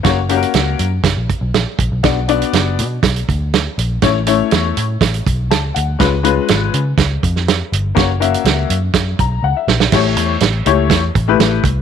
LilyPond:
<<
  \new Staff \with { instrumentName = "Upright piano" } { \time 4/4 \key a \mixolydian \tempo 4 = 122 <ais cis' fis' cis''>16 r16 <ais cis' fis' g' ais'>4 r2 r8 | <b d' fis' d''>16 r16 <b d' fis' d''>4 r2 r8 | <a cis' e' cis''>16 r16 <a cis' e' cis''>4 r4. a''8 fis''8 | <gis cis' eis' b'>16 r16 <gis cis' eis' b'>4 r2 r8 |
<ais cis' fis' cis''>16 r16 <ais cis' fis' e''>4 r4 ais''8 fis''16 e''8. | <a e' g' cis''>8. r8. <a e' g' cis''>8. r8 <a e' g' b'>8. r8 | }
  \new Staff \with { instrumentName = "Picked electric bass" } { \clef bass \time 4/4 \key a \mixolydian fis,,4 cis,8 fis,8 fis,,16 ais,,16 r16 b,,16 ais,,16 r16 ais,,16 b,,16 | b,,4 fis,,8 b,8 b,,8 d,4 ais,,8 | a,,4 e,8 a,8 a,,8 b,,8 cis,8 d,8 | cis,4 gis,,8 cis8 cis,8 eis,4 g,,8 |
fis,,4 cis,8 fis,8 fis,8 b,,8 cis,16 r16 ais,,8 | a,,8 e,8 a,,8 cis,8 e,8 a,,8 a,,8 c,8 | }
  \new DrumStaff \with { instrumentName = "Drums" } \drummode { \time 4/4 <hh bd sn>8 hh16 hh16 <hh sn>8 hh8 <hh bd sn>8 <hh bd>8 <hh sn>8 <hh bd>8 | <hh bd sn>8 hh16 hh16 <hh sn>8 hh8 <hh bd sn>16 hh16 <hh bd>8 <hh sn>8 hh8 | <hh bd sn>8 hh8 <hh sn>8 hh8 <hh bd sn>16 hh16 <hh bd>8 <hh sn>8 hh8 | <hh bd sn>8 hh8 <hh sn>8 hh8 <hh bd sn>8 <hh bd>16 sn16 <hh sn>8 hh8 |
<hh bd sn>8 hh16 hh16 <hh sn>8 hh8 <hh bd sn>8 <hh bd>8 r8 sn16 sn16 | <cymc bd sn>8 hh8 <hh sn>8 hh8 <hh bd sn>8 <hh bd>8 <hh sn>8 <hh bd>8 | }
>>